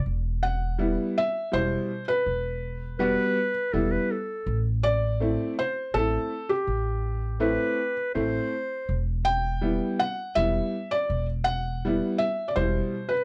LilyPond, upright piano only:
\new Staff \with { instrumentName = "Upright piano" } { \time 3/4 \tempo 4 = 82 r4 <g b e'>8 r8 <b, g e'>8 r8 | r4 <g b fis'>8 r8 <g b e'>8 r8 | r4 <a c' e'>8 r8 <a c' e'>8 r8 | r4 <a c' e'>8 r8 <a c' e'>8 r8 |
r4 <g b e'>8 r8 <g b e'>8 r8 | r4 <g b e'>8 r8 <b, g e'>8 r8 | }